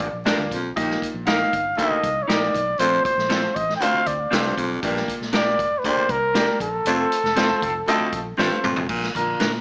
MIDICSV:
0, 0, Header, 1, 9, 480
1, 0, Start_track
1, 0, Tempo, 508044
1, 723, Time_signature, 4, 2, 24, 8
1, 9079, End_track
2, 0, Start_track
2, 0, Title_t, "Trumpet"
2, 0, Program_c, 0, 56
2, 0, Note_on_c, 0, 74, 82
2, 219, Note_off_c, 0, 74, 0
2, 1204, Note_on_c, 0, 77, 100
2, 1683, Note_on_c, 0, 75, 105
2, 1697, Note_off_c, 0, 77, 0
2, 2107, Note_on_c, 0, 73, 67
2, 2121, Note_off_c, 0, 75, 0
2, 2161, Note_on_c, 0, 74, 91
2, 2175, Note_off_c, 0, 73, 0
2, 2641, Note_on_c, 0, 72, 88
2, 2655, Note_off_c, 0, 74, 0
2, 2876, Note_off_c, 0, 72, 0
2, 2882, Note_on_c, 0, 72, 91
2, 3362, Note_on_c, 0, 75, 91
2, 3376, Note_off_c, 0, 72, 0
2, 3541, Note_off_c, 0, 75, 0
2, 3557, Note_on_c, 0, 79, 70
2, 3610, Note_on_c, 0, 77, 110
2, 3625, Note_off_c, 0, 79, 0
2, 3848, Note_on_c, 0, 74, 84
2, 3862, Note_off_c, 0, 77, 0
2, 4324, Note_off_c, 0, 74, 0
2, 5059, Note_on_c, 0, 74, 102
2, 5471, Note_on_c, 0, 71, 72
2, 5485, Note_off_c, 0, 74, 0
2, 5529, Note_on_c, 0, 72, 110
2, 5543, Note_off_c, 0, 71, 0
2, 5773, Note_on_c, 0, 70, 97
2, 5787, Note_off_c, 0, 72, 0
2, 6245, Note_off_c, 0, 70, 0
2, 6251, Note_on_c, 0, 69, 99
2, 7890, Note_off_c, 0, 69, 0
2, 9079, End_track
3, 0, Start_track
3, 0, Title_t, "Clean electric guitar"
3, 0, Program_c, 1, 27
3, 244, Note_on_c, 1, 62, 81
3, 250, Note_on_c, 1, 65, 73
3, 253, Note_on_c, 1, 70, 91
3, 341, Note_off_c, 1, 62, 0
3, 343, Note_off_c, 1, 65, 0
3, 345, Note_off_c, 1, 70, 0
3, 1196, Note_on_c, 1, 63, 76
3, 1201, Note_on_c, 1, 67, 85
3, 1203, Note_on_c, 1, 70, 84
3, 1296, Note_off_c, 1, 63, 0
3, 1298, Note_off_c, 1, 67, 0
3, 1299, Note_off_c, 1, 70, 0
3, 2150, Note_on_c, 1, 63, 72
3, 2157, Note_on_c, 1, 67, 74
3, 2163, Note_on_c, 1, 70, 80
3, 2252, Note_off_c, 1, 63, 0
3, 2256, Note_off_c, 1, 67, 0
3, 2259, Note_off_c, 1, 70, 0
3, 3106, Note_on_c, 1, 60, 75
3, 3113, Note_on_c, 1, 65, 77
3, 3119, Note_on_c, 1, 69, 91
3, 3210, Note_off_c, 1, 60, 0
3, 3213, Note_off_c, 1, 65, 0
3, 3217, Note_off_c, 1, 69, 0
3, 4069, Note_on_c, 1, 60, 77
3, 4074, Note_on_c, 1, 65, 80
3, 4081, Note_on_c, 1, 69, 82
3, 4171, Note_off_c, 1, 60, 0
3, 4174, Note_off_c, 1, 65, 0
3, 4178, Note_off_c, 1, 69, 0
3, 5033, Note_on_c, 1, 62, 87
3, 5036, Note_on_c, 1, 67, 90
3, 5044, Note_on_c, 1, 70, 97
3, 5134, Note_off_c, 1, 62, 0
3, 5135, Note_off_c, 1, 67, 0
3, 5139, Note_off_c, 1, 70, 0
3, 5993, Note_on_c, 1, 62, 78
3, 6000, Note_on_c, 1, 67, 82
3, 6005, Note_on_c, 1, 70, 85
3, 6094, Note_off_c, 1, 62, 0
3, 6098, Note_off_c, 1, 67, 0
3, 6100, Note_off_c, 1, 70, 0
3, 6952, Note_on_c, 1, 60, 84
3, 6960, Note_on_c, 1, 65, 84
3, 6964, Note_on_c, 1, 69, 88
3, 7054, Note_off_c, 1, 60, 0
3, 7058, Note_off_c, 1, 65, 0
3, 7060, Note_off_c, 1, 69, 0
3, 7913, Note_on_c, 1, 60, 82
3, 7920, Note_on_c, 1, 65, 86
3, 7923, Note_on_c, 1, 69, 94
3, 8015, Note_off_c, 1, 60, 0
3, 8018, Note_off_c, 1, 65, 0
3, 8020, Note_off_c, 1, 69, 0
3, 8879, Note_on_c, 1, 62, 81
3, 8883, Note_on_c, 1, 65, 81
3, 8888, Note_on_c, 1, 70, 94
3, 8979, Note_off_c, 1, 62, 0
3, 8981, Note_off_c, 1, 65, 0
3, 8984, Note_off_c, 1, 70, 0
3, 9079, End_track
4, 0, Start_track
4, 0, Title_t, "Grand piano"
4, 0, Program_c, 2, 0
4, 239, Note_on_c, 2, 62, 73
4, 242, Note_on_c, 2, 65, 66
4, 243, Note_on_c, 2, 74, 79
4, 244, Note_on_c, 2, 58, 77
4, 509, Note_off_c, 2, 62, 0
4, 510, Note_off_c, 2, 65, 0
4, 511, Note_off_c, 2, 58, 0
4, 511, Note_off_c, 2, 74, 0
4, 720, Note_on_c, 2, 58, 74
4, 720, Note_on_c, 2, 63, 73
4, 721, Note_on_c, 2, 67, 67
4, 722, Note_on_c, 2, 75, 81
4, 723, Note_on_c, 2, 46, 66
4, 989, Note_off_c, 2, 58, 0
4, 989, Note_off_c, 2, 63, 0
4, 990, Note_off_c, 2, 67, 0
4, 990, Note_off_c, 2, 75, 0
4, 1202, Note_on_c, 2, 63, 65
4, 1203, Note_on_c, 2, 58, 68
4, 1205, Note_on_c, 2, 67, 59
4, 1207, Note_on_c, 2, 75, 72
4, 1404, Note_off_c, 2, 46, 0
4, 1470, Note_off_c, 2, 58, 0
4, 1470, Note_off_c, 2, 63, 0
4, 1471, Note_off_c, 2, 67, 0
4, 1472, Note_off_c, 2, 75, 0
4, 1675, Note_on_c, 2, 67, 64
4, 1677, Note_on_c, 2, 58, 77
4, 1677, Note_on_c, 2, 63, 64
4, 1683, Note_on_c, 2, 69, 86
4, 1946, Note_off_c, 2, 67, 0
4, 1947, Note_off_c, 2, 58, 0
4, 1947, Note_off_c, 2, 63, 0
4, 1950, Note_off_c, 2, 69, 0
4, 2161, Note_on_c, 2, 63, 60
4, 2163, Note_on_c, 2, 67, 62
4, 2164, Note_on_c, 2, 75, 66
4, 2165, Note_on_c, 2, 58, 68
4, 2429, Note_off_c, 2, 63, 0
4, 2430, Note_off_c, 2, 67, 0
4, 2430, Note_off_c, 2, 75, 0
4, 2431, Note_off_c, 2, 58, 0
4, 2642, Note_on_c, 2, 57, 62
4, 2645, Note_on_c, 2, 46, 53
4, 2647, Note_on_c, 2, 72, 72
4, 2648, Note_on_c, 2, 60, 63
4, 2651, Note_on_c, 2, 65, 61
4, 2909, Note_off_c, 2, 57, 0
4, 2912, Note_off_c, 2, 60, 0
4, 2912, Note_off_c, 2, 72, 0
4, 2914, Note_off_c, 2, 65, 0
4, 3137, Note_on_c, 2, 57, 67
4, 3137, Note_on_c, 2, 60, 57
4, 3138, Note_on_c, 2, 65, 65
4, 3138, Note_on_c, 2, 72, 83
4, 3325, Note_off_c, 2, 46, 0
4, 3397, Note_off_c, 2, 57, 0
4, 3397, Note_off_c, 2, 60, 0
4, 3397, Note_off_c, 2, 65, 0
4, 3397, Note_off_c, 2, 72, 0
4, 3612, Note_on_c, 2, 60, 73
4, 3614, Note_on_c, 2, 65, 69
4, 3615, Note_on_c, 2, 57, 78
4, 3617, Note_on_c, 2, 72, 84
4, 3874, Note_off_c, 2, 60, 0
4, 3875, Note_off_c, 2, 65, 0
4, 3876, Note_off_c, 2, 57, 0
4, 3877, Note_off_c, 2, 72, 0
4, 4096, Note_on_c, 2, 57, 67
4, 4098, Note_on_c, 2, 60, 62
4, 4101, Note_on_c, 2, 65, 62
4, 4101, Note_on_c, 2, 72, 75
4, 4356, Note_off_c, 2, 57, 0
4, 4358, Note_off_c, 2, 60, 0
4, 4359, Note_off_c, 2, 65, 0
4, 4359, Note_off_c, 2, 72, 0
4, 4575, Note_on_c, 2, 62, 73
4, 4575, Note_on_c, 2, 67, 67
4, 4576, Note_on_c, 2, 46, 74
4, 4577, Note_on_c, 2, 74, 82
4, 4578, Note_on_c, 2, 58, 88
4, 4836, Note_off_c, 2, 62, 0
4, 4836, Note_off_c, 2, 67, 0
4, 4837, Note_off_c, 2, 74, 0
4, 4838, Note_off_c, 2, 58, 0
4, 5048, Note_on_c, 2, 58, 71
4, 5048, Note_on_c, 2, 67, 66
4, 5053, Note_on_c, 2, 62, 59
4, 5053, Note_on_c, 2, 74, 79
4, 5251, Note_off_c, 2, 46, 0
4, 5313, Note_off_c, 2, 58, 0
4, 5313, Note_off_c, 2, 67, 0
4, 5315, Note_off_c, 2, 62, 0
4, 5315, Note_off_c, 2, 74, 0
4, 5532, Note_on_c, 2, 58, 75
4, 5532, Note_on_c, 2, 67, 67
4, 5535, Note_on_c, 2, 62, 71
4, 5535, Note_on_c, 2, 74, 87
4, 5795, Note_off_c, 2, 58, 0
4, 5795, Note_off_c, 2, 67, 0
4, 5796, Note_off_c, 2, 62, 0
4, 5796, Note_off_c, 2, 74, 0
4, 6006, Note_on_c, 2, 58, 67
4, 6009, Note_on_c, 2, 62, 64
4, 6009, Note_on_c, 2, 74, 75
4, 6010, Note_on_c, 2, 67, 64
4, 6272, Note_off_c, 2, 58, 0
4, 6273, Note_off_c, 2, 74, 0
4, 6274, Note_off_c, 2, 62, 0
4, 6274, Note_off_c, 2, 67, 0
4, 6487, Note_on_c, 2, 57, 69
4, 6488, Note_on_c, 2, 60, 64
4, 6493, Note_on_c, 2, 72, 76
4, 6494, Note_on_c, 2, 65, 59
4, 6753, Note_off_c, 2, 57, 0
4, 6753, Note_off_c, 2, 60, 0
4, 6756, Note_off_c, 2, 65, 0
4, 6756, Note_off_c, 2, 72, 0
4, 6965, Note_on_c, 2, 57, 87
4, 6966, Note_on_c, 2, 60, 76
4, 6966, Note_on_c, 2, 65, 85
4, 6966, Note_on_c, 2, 72, 101
4, 7232, Note_off_c, 2, 57, 0
4, 7232, Note_off_c, 2, 60, 0
4, 7232, Note_off_c, 2, 65, 0
4, 7232, Note_off_c, 2, 72, 0
4, 7446, Note_on_c, 2, 60, 82
4, 7447, Note_on_c, 2, 57, 85
4, 7450, Note_on_c, 2, 65, 82
4, 7450, Note_on_c, 2, 75, 94
4, 7713, Note_off_c, 2, 57, 0
4, 7713, Note_off_c, 2, 60, 0
4, 7715, Note_off_c, 2, 65, 0
4, 7715, Note_off_c, 2, 75, 0
4, 7929, Note_on_c, 2, 57, 81
4, 7929, Note_on_c, 2, 60, 72
4, 7930, Note_on_c, 2, 72, 92
4, 7932, Note_on_c, 2, 65, 74
4, 8195, Note_off_c, 2, 57, 0
4, 8195, Note_off_c, 2, 60, 0
4, 8195, Note_off_c, 2, 72, 0
4, 8196, Note_off_c, 2, 65, 0
4, 8647, Note_on_c, 2, 50, 58
4, 8655, Note_on_c, 2, 70, 90
4, 8656, Note_on_c, 2, 53, 51
4, 8657, Note_on_c, 2, 58, 56
4, 8966, Note_off_c, 2, 50, 0
4, 8970, Note_off_c, 2, 53, 0
4, 8971, Note_off_c, 2, 58, 0
4, 9079, Note_off_c, 2, 70, 0
4, 9079, End_track
5, 0, Start_track
5, 0, Title_t, "Horn section"
5, 0, Program_c, 3, 61
5, 0, Note_on_c, 3, 53, 88
5, 0, Note_on_c, 3, 62, 94
5, 0, Note_on_c, 3, 70, 96
5, 109, Note_off_c, 3, 62, 0
5, 109, Note_off_c, 3, 70, 0
5, 111, Note_off_c, 3, 53, 0
5, 7200, Note_on_c, 3, 69, 98
5, 7201, Note_on_c, 3, 53, 85
5, 7202, Note_on_c, 3, 60, 79
5, 7303, Note_off_c, 3, 69, 0
5, 7304, Note_off_c, 3, 53, 0
5, 7304, Note_off_c, 3, 60, 0
5, 7442, Note_on_c, 3, 53, 85
5, 7444, Note_on_c, 3, 60, 91
5, 7444, Note_on_c, 3, 69, 103
5, 7785, Note_off_c, 3, 53, 0
5, 7786, Note_off_c, 3, 60, 0
5, 7786, Note_off_c, 3, 69, 0
5, 9079, End_track
6, 0, Start_track
6, 0, Title_t, "Baritone saxophone"
6, 0, Program_c, 4, 67
6, 243, Note_on_c, 4, 43, 73
6, 435, Note_off_c, 4, 43, 0
6, 484, Note_on_c, 4, 41, 64
6, 675, Note_off_c, 4, 41, 0
6, 724, Note_on_c, 4, 39, 69
6, 915, Note_off_c, 4, 39, 0
6, 1677, Note_on_c, 4, 38, 80
6, 1871, Note_off_c, 4, 38, 0
6, 2639, Note_on_c, 4, 41, 86
6, 2832, Note_off_c, 4, 41, 0
6, 3593, Note_on_c, 4, 38, 82
6, 3788, Note_off_c, 4, 38, 0
6, 4084, Note_on_c, 4, 43, 84
6, 4274, Note_off_c, 4, 43, 0
6, 4318, Note_on_c, 4, 41, 76
6, 4511, Note_off_c, 4, 41, 0
6, 4551, Note_on_c, 4, 43, 79
6, 4747, Note_off_c, 4, 43, 0
6, 5523, Note_on_c, 4, 38, 89
6, 5714, Note_off_c, 4, 38, 0
6, 6487, Note_on_c, 4, 41, 93
6, 6677, Note_off_c, 4, 41, 0
6, 7439, Note_on_c, 4, 38, 91
6, 7633, Note_off_c, 4, 38, 0
6, 7920, Note_on_c, 4, 43, 76
6, 8114, Note_off_c, 4, 43, 0
6, 8161, Note_on_c, 4, 41, 77
6, 8355, Note_off_c, 4, 41, 0
6, 8399, Note_on_c, 4, 46, 74
6, 8594, Note_off_c, 4, 46, 0
6, 9079, End_track
7, 0, Start_track
7, 0, Title_t, "Fingered electric bass"
7, 0, Program_c, 5, 33
7, 124, Note_on_c, 5, 34, 88
7, 303, Note_off_c, 5, 34, 0
7, 362, Note_on_c, 5, 38, 84
7, 452, Note_off_c, 5, 38, 0
7, 487, Note_on_c, 5, 35, 88
7, 664, Note_off_c, 5, 35, 0
7, 724, Note_on_c, 5, 34, 103
7, 903, Note_off_c, 5, 34, 0
7, 1079, Note_on_c, 5, 34, 84
7, 1349, Note_off_c, 5, 34, 0
7, 1448, Note_on_c, 5, 31, 97
7, 1625, Note_off_c, 5, 31, 0
7, 1923, Note_on_c, 5, 36, 82
7, 2102, Note_off_c, 5, 36, 0
7, 2165, Note_on_c, 5, 34, 95
7, 2343, Note_off_c, 5, 34, 0
7, 2403, Note_on_c, 5, 35, 97
7, 2581, Note_off_c, 5, 35, 0
7, 2640, Note_on_c, 5, 34, 108
7, 2820, Note_off_c, 5, 34, 0
7, 3000, Note_on_c, 5, 34, 88
7, 3269, Note_off_c, 5, 34, 0
7, 3366, Note_on_c, 5, 33, 103
7, 3543, Note_off_c, 5, 33, 0
7, 3839, Note_on_c, 5, 38, 82
7, 4019, Note_off_c, 5, 38, 0
7, 4085, Note_on_c, 5, 36, 92
7, 4263, Note_off_c, 5, 36, 0
7, 4322, Note_on_c, 5, 35, 87
7, 4501, Note_off_c, 5, 35, 0
7, 4565, Note_on_c, 5, 34, 108
7, 4743, Note_off_c, 5, 34, 0
7, 4924, Note_on_c, 5, 34, 95
7, 5284, Note_off_c, 5, 34, 0
7, 5284, Note_on_c, 5, 31, 99
7, 5462, Note_off_c, 5, 31, 0
7, 5753, Note_on_c, 5, 36, 83
7, 6115, Note_off_c, 5, 36, 0
7, 6239, Note_on_c, 5, 34, 92
7, 6419, Note_off_c, 5, 34, 0
7, 6471, Note_on_c, 5, 29, 110
7, 6654, Note_off_c, 5, 29, 0
7, 6836, Note_on_c, 5, 29, 93
7, 7108, Note_off_c, 5, 29, 0
7, 7201, Note_on_c, 5, 29, 108
7, 7381, Note_off_c, 5, 29, 0
7, 7682, Note_on_c, 5, 34, 83
7, 7862, Note_off_c, 5, 34, 0
7, 7926, Note_on_c, 5, 33, 90
7, 8015, Note_off_c, 5, 33, 0
7, 8169, Note_on_c, 5, 31, 85
7, 8257, Note_off_c, 5, 31, 0
7, 8293, Note_on_c, 5, 29, 86
7, 8379, Note_off_c, 5, 29, 0
7, 8406, Note_on_c, 5, 34, 109
7, 8585, Note_off_c, 5, 34, 0
7, 8642, Note_on_c, 5, 34, 96
7, 8822, Note_off_c, 5, 34, 0
7, 8903, Note_on_c, 5, 46, 90
7, 9076, Note_off_c, 5, 46, 0
7, 9079, End_track
8, 0, Start_track
8, 0, Title_t, "Muted fingered electric bass strokes"
8, 1804, Note_on_c, 9, 29, 43
8, 1898, Note_off_c, 9, 29, 0
8, 3728, Note_on_c, 9, 29, 41
8, 3823, Note_off_c, 9, 29, 0
8, 5639, Note_on_c, 9, 29, 45
8, 5734, Note_off_c, 9, 29, 0
8, 7561, Note_on_c, 9, 29, 45
8, 7655, Note_off_c, 9, 29, 0
8, 9079, End_track
9, 0, Start_track
9, 0, Title_t, "Drums"
9, 0, Note_on_c, 9, 42, 58
9, 2, Note_on_c, 9, 36, 95
9, 91, Note_off_c, 9, 42, 0
9, 96, Note_off_c, 9, 36, 0
9, 248, Note_on_c, 9, 42, 86
9, 249, Note_on_c, 9, 38, 110
9, 343, Note_off_c, 9, 38, 0
9, 343, Note_off_c, 9, 42, 0
9, 486, Note_on_c, 9, 36, 85
9, 488, Note_on_c, 9, 42, 69
9, 580, Note_off_c, 9, 36, 0
9, 583, Note_off_c, 9, 42, 0
9, 726, Note_on_c, 9, 36, 125
9, 728, Note_on_c, 9, 42, 92
9, 820, Note_off_c, 9, 36, 0
9, 823, Note_off_c, 9, 42, 0
9, 858, Note_on_c, 9, 38, 36
9, 952, Note_off_c, 9, 38, 0
9, 966, Note_on_c, 9, 36, 94
9, 974, Note_on_c, 9, 42, 77
9, 1060, Note_off_c, 9, 36, 0
9, 1068, Note_off_c, 9, 42, 0
9, 1195, Note_on_c, 9, 42, 70
9, 1207, Note_on_c, 9, 38, 96
9, 1290, Note_off_c, 9, 42, 0
9, 1302, Note_off_c, 9, 38, 0
9, 1448, Note_on_c, 9, 36, 85
9, 1448, Note_on_c, 9, 42, 65
9, 1542, Note_off_c, 9, 36, 0
9, 1542, Note_off_c, 9, 42, 0
9, 1688, Note_on_c, 9, 36, 81
9, 1688, Note_on_c, 9, 42, 80
9, 1782, Note_off_c, 9, 36, 0
9, 1783, Note_off_c, 9, 42, 0
9, 1923, Note_on_c, 9, 36, 92
9, 1923, Note_on_c, 9, 42, 64
9, 2017, Note_off_c, 9, 36, 0
9, 2017, Note_off_c, 9, 42, 0
9, 2169, Note_on_c, 9, 38, 118
9, 2169, Note_on_c, 9, 42, 94
9, 2263, Note_off_c, 9, 42, 0
9, 2264, Note_off_c, 9, 38, 0
9, 2405, Note_on_c, 9, 36, 81
9, 2410, Note_on_c, 9, 42, 68
9, 2500, Note_off_c, 9, 36, 0
9, 2505, Note_off_c, 9, 42, 0
9, 2639, Note_on_c, 9, 42, 89
9, 2733, Note_off_c, 9, 42, 0
9, 2882, Note_on_c, 9, 36, 102
9, 2887, Note_on_c, 9, 42, 73
9, 2977, Note_off_c, 9, 36, 0
9, 2982, Note_off_c, 9, 42, 0
9, 3008, Note_on_c, 9, 38, 38
9, 3103, Note_off_c, 9, 38, 0
9, 3114, Note_on_c, 9, 42, 63
9, 3126, Note_on_c, 9, 38, 92
9, 3208, Note_off_c, 9, 42, 0
9, 3220, Note_off_c, 9, 38, 0
9, 3365, Note_on_c, 9, 36, 87
9, 3365, Note_on_c, 9, 42, 63
9, 3460, Note_off_c, 9, 36, 0
9, 3460, Note_off_c, 9, 42, 0
9, 3491, Note_on_c, 9, 38, 34
9, 3585, Note_off_c, 9, 38, 0
9, 3605, Note_on_c, 9, 42, 79
9, 3699, Note_off_c, 9, 42, 0
9, 3840, Note_on_c, 9, 42, 65
9, 3841, Note_on_c, 9, 36, 87
9, 3934, Note_off_c, 9, 42, 0
9, 3936, Note_off_c, 9, 36, 0
9, 4090, Note_on_c, 9, 38, 123
9, 4090, Note_on_c, 9, 42, 84
9, 4184, Note_off_c, 9, 42, 0
9, 4185, Note_off_c, 9, 38, 0
9, 4324, Note_on_c, 9, 36, 84
9, 4329, Note_on_c, 9, 42, 62
9, 4418, Note_off_c, 9, 36, 0
9, 4423, Note_off_c, 9, 42, 0
9, 4563, Note_on_c, 9, 36, 117
9, 4565, Note_on_c, 9, 42, 93
9, 4657, Note_off_c, 9, 36, 0
9, 4660, Note_off_c, 9, 42, 0
9, 4690, Note_on_c, 9, 38, 34
9, 4785, Note_off_c, 9, 38, 0
9, 4803, Note_on_c, 9, 36, 95
9, 4812, Note_on_c, 9, 42, 80
9, 4897, Note_off_c, 9, 36, 0
9, 4907, Note_off_c, 9, 42, 0
9, 4930, Note_on_c, 9, 38, 34
9, 5024, Note_off_c, 9, 38, 0
9, 5032, Note_on_c, 9, 42, 73
9, 5044, Note_on_c, 9, 38, 102
9, 5127, Note_off_c, 9, 42, 0
9, 5139, Note_off_c, 9, 38, 0
9, 5283, Note_on_c, 9, 36, 100
9, 5288, Note_on_c, 9, 42, 65
9, 5378, Note_off_c, 9, 36, 0
9, 5382, Note_off_c, 9, 42, 0
9, 5522, Note_on_c, 9, 36, 73
9, 5522, Note_on_c, 9, 42, 80
9, 5616, Note_off_c, 9, 36, 0
9, 5617, Note_off_c, 9, 42, 0
9, 5756, Note_on_c, 9, 42, 60
9, 5757, Note_on_c, 9, 36, 99
9, 5850, Note_off_c, 9, 42, 0
9, 5851, Note_off_c, 9, 36, 0
9, 6001, Note_on_c, 9, 38, 114
9, 6001, Note_on_c, 9, 42, 97
9, 6095, Note_off_c, 9, 42, 0
9, 6096, Note_off_c, 9, 38, 0
9, 6239, Note_on_c, 9, 36, 83
9, 6243, Note_on_c, 9, 42, 69
9, 6333, Note_off_c, 9, 36, 0
9, 6337, Note_off_c, 9, 42, 0
9, 6477, Note_on_c, 9, 42, 95
9, 6571, Note_off_c, 9, 42, 0
9, 6724, Note_on_c, 9, 42, 80
9, 6819, Note_off_c, 9, 42, 0
9, 6847, Note_on_c, 9, 38, 36
9, 6942, Note_off_c, 9, 38, 0
9, 6955, Note_on_c, 9, 42, 74
9, 6968, Note_on_c, 9, 38, 90
9, 7050, Note_off_c, 9, 42, 0
9, 7062, Note_off_c, 9, 38, 0
9, 7203, Note_on_c, 9, 36, 99
9, 7207, Note_on_c, 9, 42, 70
9, 7297, Note_off_c, 9, 36, 0
9, 7301, Note_off_c, 9, 42, 0
9, 7443, Note_on_c, 9, 42, 72
9, 7537, Note_off_c, 9, 42, 0
9, 7676, Note_on_c, 9, 42, 66
9, 7678, Note_on_c, 9, 36, 92
9, 7770, Note_off_c, 9, 42, 0
9, 7773, Note_off_c, 9, 36, 0
9, 7925, Note_on_c, 9, 38, 60
9, 8019, Note_off_c, 9, 38, 0
9, 8163, Note_on_c, 9, 45, 83
9, 8257, Note_off_c, 9, 45, 0
9, 8279, Note_on_c, 9, 43, 85
9, 8373, Note_off_c, 9, 43, 0
9, 8399, Note_on_c, 9, 49, 86
9, 8402, Note_on_c, 9, 36, 107
9, 8493, Note_off_c, 9, 49, 0
9, 8497, Note_off_c, 9, 36, 0
9, 8529, Note_on_c, 9, 38, 37
9, 8623, Note_off_c, 9, 38, 0
9, 8644, Note_on_c, 9, 36, 88
9, 8651, Note_on_c, 9, 42, 78
9, 8739, Note_off_c, 9, 36, 0
9, 8746, Note_off_c, 9, 42, 0
9, 8878, Note_on_c, 9, 42, 68
9, 8891, Note_on_c, 9, 38, 87
9, 8973, Note_off_c, 9, 42, 0
9, 8985, Note_off_c, 9, 38, 0
9, 9079, End_track
0, 0, End_of_file